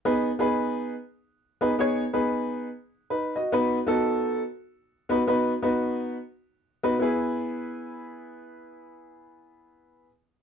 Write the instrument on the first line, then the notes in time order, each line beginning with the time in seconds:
grand piano
0.05 B3 D#4 G#4 B4
0.39 B3 D#4 G#4 B4
1.61 B3 D#4 G#4 B4
1.79 B3 D#4 G#4 C#5
2.13 B3 D#4 G#4 B4
3.10 D#4 B4
3.36 F#4 D#5
3.52 B3 D#4 F#4 B4
3.86 B3 D#4 F#4 A4
5.09 B3 D#4 F#4 B4
5.27 B3 D#4 F#4 B4
5.62 B3 D#4 F#4 B4
6.83 B3 D#4 F#4 B4
6.99 B3 E4 G#4 B4